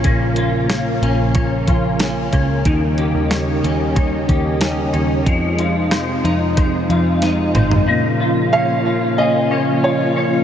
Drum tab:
HH |x-x-x-x-x-x-x-x-|x-x-x-x-x-x-x-x-|x-x-x-x-x-x-x-x-|----------------|
SD |----o-------o---|----o-------o---|----o-------o---|----------------|
T2 |----------------|----------------|--------------o-|----------------|
FT |----------------|----------------|---------------o|----------------|
BD |o-------o-o---o-|o-------o-o-----|o-------o-------|----------------|